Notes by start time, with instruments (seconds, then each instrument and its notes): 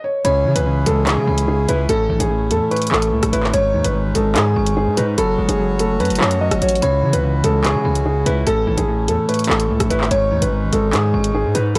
0.04 grand piano C#5
0.25 808-style bass C#2, clean electric guitar C#3, accordion C#3 C#4 E4 G#4, grand piano C#5, synth bell B5, closed hi-hat
0.45 808-style bass C#3, clean electric guitar E3
0.55 808-style bass C#2, grand piano B4, closed hi-hat
0.66 clean electric guitar C#3
0.86 808-style bass C#2, clean electric guitar G#3, grand piano A4, closed hi-hat
1.07 clean electric guitar C#3, grand piano G#4, synth bell C#6, clap, closed hi-hat
1.17 808-style bass C#3
1.27 808-style bass C#2, synth bell B5
1.38 closed hi-hat
1.48 clean electric guitar C#3, grand piano G#4
1.68 808-style bass C#2, clean electric guitar E4, grand piano B4, closed hi-hat
1.89 808-style bass A1, clean electric guitar A2, accordion A3, grand piano A4, synth bell A5, closed hi-hat
2.09 808-style bass A1, clean electric guitar E3
2.20 808-style bass A1, grand piano G#4, closed hi-hat
2.30 clean electric guitar A2
2.51 808-style bass E2, clean electric guitar A3, grand piano A4, closed hi-hat
2.71 clean electric guitar A2, grand piano B4, synth bell C#6, closed hi-hat
2.76 closed hi-hat
2.82 closed hi-hat
2.87 closed hi-hat
2.92 808-style bass A1, grand piano A4, clap
3.02 closed hi-hat
3.12 808-style bass C#2, clean electric guitar A2
3.23 808-style bass A1, cross-stick, closed hi-hat
3.33 808-style bass G#1, clean electric guitar E4, grand piano B4, closed hi-hat
3.43 clap
3.53 808-style bass G#1, clean electric guitar G#2, accordion G#3 D#4, grand piano C#5, synth bell C#6, closed hi-hat
3.74 808-style bass D#2, clean electric guitar D#3
3.84 808-style bass G#1, grand piano B4, closed hi-hat
3.94 clean electric guitar G#2
4.05 808-style bass A1
4.15 808-style bass G#1, clean electric guitar G#3, grand piano A4, closed hi-hat
4.36 808-style bass G#2, clean electric guitar G#2, grand piano G#4, synth bell D#6, clap, closed hi-hat
4.56 808-style bass G#1, synth bell C#6
4.66 closed hi-hat
4.77 clean electric guitar G#2, grand piano G#4
4.87 808-style bass G#2
4.97 808-style bass G#2, clean electric guitar D#4, grand piano B4, closed hi-hat
5.18 808-style bass F#1, accordion F#3 F#4 C#5, clean electric guitar F#3, grand piano A4, synth bell B5, closed hi-hat
5.38 808-style bass F#1, clean electric guitar G#3
5.48 808-style bass F#1, grand piano G#4, closed hi-hat
5.59 clean electric guitar F#3
5.79 clean electric guitar A3, grand piano A4, closed hi-hat
6.00 808-style bass F#2, clean electric guitar F#3, grand piano B4, synth bell A5, closed hi-hat
6.05 closed hi-hat
6.10 808-style bass F#1, closed hi-hat
6.15 closed hi-hat
6.21 808-style bass F#2, grand piano C#5, clap
6.31 closed hi-hat
6.41 clean electric guitar F#3, grand piano D#5
6.51 808-style bass F#1, cross-stick, closed hi-hat
6.62 808-style bass A1, clean electric guitar F#4, grand piano C#5, closed hi-hat
6.69 closed hi-hat
6.75 closed hi-hat
6.82 808-style bass C#2, clean electric guitar C#3, accordion C#3 E4, grand piano C#5, synth bell B5, closed hi-hat
7.02 808-style bass C#3, clean electric guitar E3
7.13 808-style bass C#2, grand piano B4, closed hi-hat
7.24 clean electric guitar C#3
7.44 808-style bass C#2, clean electric guitar G#3, grand piano A4, closed hi-hat
7.64 clean electric guitar C#3, grand piano G#4, synth bell C#6, clap, closed hi-hat
7.75 808-style bass C#3
7.85 808-style bass C#2, synth bell B5
7.95 closed hi-hat
8.06 clean electric guitar C#3, grand piano G#4
8.26 808-style bass C#2, clean electric guitar E4, grand piano B4, closed hi-hat
8.47 808-style bass A1, clean electric guitar A2, accordion A3, grand piano A4, synth bell A5, closed hi-hat
8.67 808-style bass A1, clean electric guitar E3
8.77 808-style bass A1, grand piano G#4, closed hi-hat
8.88 clean electric guitar A2
9.08 808-style bass E2, clean electric guitar A3, grand piano A4, closed hi-hat
9.29 clean electric guitar A2, grand piano B4, synth bell C#6, closed hi-hat
9.34 closed hi-hat
9.39 closed hi-hat
9.44 closed hi-hat
9.49 808-style bass A1, grand piano A4, clap
9.60 closed hi-hat
9.70 808-style bass C#2, clean electric guitar A2
9.80 808-style bass A1, cross-stick, closed hi-hat
9.90 808-style bass G#1, clean electric guitar E4, grand piano B4, closed hi-hat
10.01 clap
10.11 808-style bass G#1, clean electric guitar G#2, accordion G#3 C#4 D#4, grand piano C#5, synth bell C#6, closed hi-hat
10.31 808-style bass D#2, clean electric guitar D#3
10.42 808-style bass G#1, grand piano B4, closed hi-hat
10.52 clean electric guitar G#2
10.62 808-style bass A1
10.72 808-style bass G#1, clean electric guitar G#3, grand piano A4, closed hi-hat
10.93 808-style bass G#2, clean electric guitar G#2, grand piano G#4, synth bell D#6, clap, closed hi-hat
11.14 808-style bass G#1, synth bell C#6
11.24 closed hi-hat
11.34 clean electric guitar G#2, grand piano G#4
11.45 808-style bass G#2
11.55 808-style bass G#2, clean electric guitar D#4, grand piano B4, closed hi-hat
11.75 808-style bass F#1, clean electric guitar F#3, grand piano A4, synth bell B5, closed hi-hat